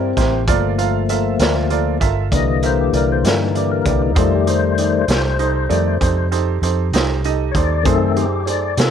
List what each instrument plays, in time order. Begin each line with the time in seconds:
Already playing: fingered electric bass G2, tonewheel organ C4
0.17 fingered electric bass A1, upright piano E4 G4 A#4 C5, kick, snare, closed hi-hat
0.47 fingered electric bass G1, tonewheel organ F3 A3 A#3, upright piano F4 A4 A#4 D5, kick, closed hi-hat
0.78 upright piano F4 A4 A#4 F5, closed hi-hat
1.09 upright piano F4 A4 A#4 E5, closed hi-hat
1.39 fingered electric bass D2, upright piano F4 A4 A#4 D5, snare, closed hi-hat
1.70 tonewheel organ F3 A3 A#3, upright piano F4 A4 A#4 D5, closed hi-hat
2.00 fingered electric bass G1, upright piano F4 A4 A#4 E5, kick, closed hi-hat
2.31 fingered electric bass C2, tonewheel organ D3 E3 A#3 D#5, upright piano E4 G4 A#4 D5, kick, closed hi-hat
2.63 upright piano E4 G4 A#4 E5, tonewheel organ C5, closed hi-hat
2.80 tonewheel organ G4
2.93 fingered electric bass C2, upright piano E4 G4 A#4 D5, closed hi-hat
2.97 tonewheel organ A#4
3.12 tonewheel organ C5
3.23 fingered electric bass G2, upright piano E4 G4 A#4 D5, tonewheel organ A#4, snare, closed hi-hat
3.41 tonewheel organ D#4
3.55 upright piano E4 G4 A#4 D5, tonewheel organ G4, closed hi-hat
3.72 tonewheel organ A#4
3.85 fingered electric bass C2, upright piano E4 G4 A#4 D5, tonewheel organ G4, kick, closed hi-hat
4.02 tonewheel organ D#4
4.15 fingered electric bass F2, tonewheel organ D#3 G3 A3, upright piano D#4 G4 A4 C5, kick, closed hi-hat
4.21 tonewheel organ F4
4.35 tonewheel organ G4
4.47 upright piano D#4 G4 A4 C5, tonewheel organ C5, closed hi-hat
4.78 upright piano D#4 G4 A4 D5, closed hi-hat
5.08 fingered electric bass C2, upright piano D#4 G4 A4 C5, snare, closed hi-hat
5.39 upright piano D#4 G4 A4 C5, closed hi-hat
5.69 fingered electric bass F2, tonewheel organ D#3 G3 A3, upright piano D#4 G4 A4 D5, closed hi-hat
6.01 fingered electric bass F2, upright piano D#4 G4 A4 C5, kick, closed hi-hat
6.32 upright piano D#4 G4 A4 C5, closed hi-hat
6.62 fingered electric bass F2, upright piano D#4 G4 A4 C5, closed hi-hat
6.92 fingered electric bass C2, upright piano D#4 G4 A4 C5, snare, closed hi-hat
7.24 upright piano D#4 G4 A4 D#5, closed hi-hat
7.51 fingered electric bass D#2, upright piano D#4 G4 A4 C5, tonewheel organ C#5, kick, closed hi-hat
7.57 tonewheel organ D5
7.83 fingered electric bass F#2, tonewheel organ D#3 A3 C4 A4, upright piano D#4 G#4 A4 C5, kick, closed hi-hat
8.16 upright piano D#4 G#4 A4 C5, tonewheel organ G4, closed hi-hat
8.46 upright piano D#4 G#4 A4 C5, tonewheel organ C#5 D5, closed hi-hat
8.77 fingered electric bass C3, upright piano D#4 G#4 A4 C5, tonewheel organ A4, snare, closed hi-hat